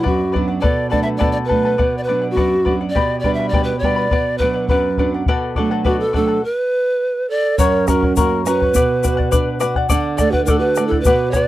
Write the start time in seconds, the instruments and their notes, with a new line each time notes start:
Already playing: nylon-string guitar F#3 B3 D4
0.03 nylon-string guitar F#2, pan flute F#4, charango B4 D5 F#5, bombo low
0.32 nylon-string guitar F#3 B3, charango B4 D5 F#5, bombo low
0.36 nylon-string guitar D4
0.48 charango D5 F#5
0.61 nylon-string guitar B2, charango A4 B4 D5 F#5 A5, pan flute D5, bombo low
0.90 nylon-string guitar F#3 A3 D4, charango A4 B4 F#5 A5, pan flute D5, bombo low
1.02 charango A4 B4 A5, pan flute E5
1.17 nylon-string guitar B2, charango A4 B4 D5 F#5 A5, pan flute D5, bombo low
1.32 pan flute D5
1.45 pan flute B4, charango B4 F#5
1.49 nylon-string guitar F#3 A3 D4, charango A4 A5, bombo low
1.65 charango A4 B4 A5
1.78 nylon-string guitar B2, charango B4 D5 F#5, bombo low
1.98 pan flute D5
2.03 pan flute B4, charango B4
2.08 nylon-string guitar F#3 B3 D4, charango D5 F#5
2.22 charango D5 F#5
2.31 pan flute F#4
2.36 nylon-string guitar F#2, charango B4 D5 F#5, bombo low
2.65 nylon-string guitar F#3 B3 D4, charango B4 D5 F#5, bombo low
2.81 charango D5 F#5
2.90 pan flute D5
2.95 nylon-string guitar B2, charango G4 B4 D5 G5 B5, bombo low
3.20 pan flute D5
3.24 nylon-string guitar G3 B3 D4, charango B4 D5 G5 B5, bombo low
3.34 pan flute E5
3.39 charango B4 D5 B5
3.49 pan flute D5
3.53 nylon-string guitar B2, charango G4 B4 D5 G5 B5, bombo low
3.64 pan flute B4
3.79 pan flute D5, bombo low
3.83 nylon-string guitar G3 B3 D4, charango B4 D5 G5 B5
3.96 charango B4 D5 B5
4.11 nylon-string guitar B2, charango B4 D5 F#5, bombo low
4.38 nylon-string guitar F#3, pan flute B4, charango B4 D5 F#5, bombo low
4.43 nylon-string guitar B3 D4
4.54 charango D5 F#5
4.68 nylon-string guitar F#2, pan flute B4, charango B4 D5 F#5, bombo low
4.97 nylon-string guitar F#3 B3 D4, charango B4 D5 F#5, bombo low
5.14 charango D5 F#5
5.26 nylon-string guitar B2, charango F#4 A4 B4 D5 F#5, bombo low
5.55 nylon-string guitar F#3 A3 D4, charango F#4 A4 D5 F#5, bombo low
5.71 charango F#4 A4 F#5
5.85 nylon-string guitar B2, pan flute F#4, charango F#4 A4 B4 D5 F#5, bombo low
6.00 pan flute A4
6.13 nylon-string guitar F#3 A3 D4, charango F#4 A4 D5 F#5, pan flute A4, bombo low
6.27 charango F#4 A4 F#5
6.44 pan flute B4
7.29 quena A4, pan flute D5
7.58 nylon-string guitar F#2, charango A#4 C#5 F#5, quena B4, pan flute C#5, bombo low, shaker
7.63 quena A#4
7.88 nylon-string guitar C#4, quena G4, charango A#4 C#5 F#5, pan flute A#4, bombo rim, bombo low, shaker
7.92 quena F#4
8.02 charango C#5 F#5, bombo low
8.16 nylon-string guitar A#3, quena F#4, pan flute A#4, charango A#4 C#5 F#5, bombo low, shaker
8.45 nylon-string guitar C#4, quena F#4, charango A#4 C#5 F#5, pan flute B4, bombo rim, shaker
8.60 charango C#5 F#5, bombo low
8.74 nylon-string guitar B2, charango B4 D5 F#5, bombo low, shaker
9.03 nylon-string guitar F#4, charango B4 D5 F#5, bombo low, shaker
9.17 charango D5 F#5, bombo low
9.31 nylon-string guitar D4, charango B4 D5 F#5, bombo low, shaker
9.60 nylon-string guitar F#4, charango B4 D5 F#5, bombo rim, shaker
9.75 charango D5 F#5, bombo low
9.89 nylon-string guitar D3, charango A4 D5 F#5, bombo low, shaker
10.17 nylon-string guitar A3, charango A4 D5 F#5, quena A4, pan flute D5, bombo rim, bombo low, shaker
10.31 quena F#4, pan flute B4, charango D5 F#5, bombo low
10.45 quena D4, pan flute A4, charango A4 D5 F#5, bombo low, shaker
10.49 nylon-string guitar F#4
10.59 quena G4, pan flute B4
10.65 quena F#4
10.75 nylon-string guitar A3, charango A4 D5 F#5, bombo rim, shaker
10.86 quena E4, pan flute A4
10.91 charango D5 F#5, bombo low
11.00 quena F#4, pan flute B4
11.04 nylon-string guitar B2, charango B4 D5 F#5, bombo low, shaker
11.31 nylon-string guitar F#4, pan flute C#5, quena D5, bombo rim, bombo low, shaker
11.36 charango B4 D5 F#5, quena B4
11.42 pan flute D5